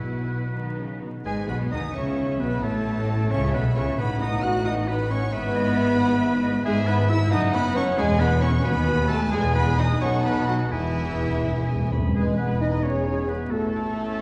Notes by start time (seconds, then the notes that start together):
Already playing: B1 B2 B3 E4 F#4 B4
0.54 D#3 B3 D#4 F#4
0.78 C#3
1.02 B2
1.25 G#1 G#2 G#3 G#4 B4 G#5
1.48 B1 B2 B3 B4 B5
1.72 D#2 D#3 D#4 D#5 D#6
1.94 C#2 C#3 C#4 C#5 E5 C#6
2.39 B1 B2 B3 B4 B5
2.62 A1 A2 A3 A4 C#5 A5
3.31 C#2 C#3 C#4 C#5 E5 C#6
3.53 B1 B2 B3 B4 B5
3.76 C#2 C#3 C#4 C#5 C#6
3.98 A1 A2 B3 D#4 B4 F#5 B5
4.21 D#4 D#5 D#6
4.43 F#4 F#5 F#6
4.64 B3 D#4 D#5 D#6
4.87 B3 B4 B5
5.09 C#4 C#5 C#6
5.32 G#1 G#2 B3 E4 B4 E5 B5
5.55 D#5
5.77 E5
5.99 F#5
6.21 E5
6.43 D#5
6.64 G#1 G#2 G#3 B3 E4 G#4 E5 G#5
6.87 B3 E4 B4 B5
7.09 B3 E4 E5 E6
7.31 F#1 F#2 A3 D#4 D#5 F#5 D#6
7.53 A3 B3 D#4 B4 B5
7.76 A3 C#4 D#4 C#5 C#6
7.98 E1 E2 G#3 C#4 E4 G#4 G#5
8.20 B3 C#4 E4 B4 B5
8.42 C#4 E4 C#5 C#6
8.64 D#2 B3 F#4 B4 G#5 B5
8.87 B3 F#4
9.08 A3 B3 F#4 A4 A5
9.31 E1 E2 G#3 B3 G#4 G#5
9.55 B3 B4 B5
9.78 D#4 D#5 D#6
10.01 B1 B2 C#4 D#4 A4 C#5 F#5 C#6
10.24 B3 B4 B5
10.47 F#3 F#4 F#5
10.72 E1 E2 E3 E4 G#4 E5 G#5
10.80 E2
10.88 E2
10.96 E2
11.04 E2
11.11 E2
11.19 E2
11.27 E2
11.35 E2
11.43 E2 E5
11.51 E2
11.59 E2
11.67 E2 G#5
11.75 E2
11.83 E2
11.91 E2 B5
11.99 E2
12.06 E2
12.15 E1 E2 G#3 G#4 B4
12.27 E5
12.37 B3 B4 G#5
12.50 B5
12.61 D#4 D#5 G#5
12.73 E5
12.83 C#4 G#4 B4 C#5
12.97 E5
13.08 G#5
13.19 B5
13.28 B3 B4 G#5
13.41 E5
13.51 A1 A2 A3 F#4 A4 C#5
13.64 E5
13.75 E4 A5
13.87 C#6
13.98 C#4 A5
14.09 E5